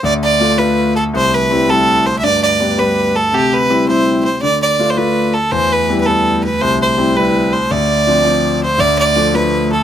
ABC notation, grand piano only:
X:1
M:6/8
L:1/8
Q:3/8=110
K:Ddor
V:1 name="Grand piano"
D,,2 [A,DF] [A,DF]2 z | C,,2 [G,CE] [G,CE]2 z | G,,2 [G,B,D] [G,B,D]2 z | C,2 [G,CE] [G,CE]2 z |
D,2 [A,DF] [A,DF]2 z | E,,2 [G,B,E] [G,B,E]2 z | C,,2 [G,CE] [G,CE]2 z | D,,2 [F,CD] [F,CD]2 z |
D,,2 [F,A,D] [F,A,D]2 z |]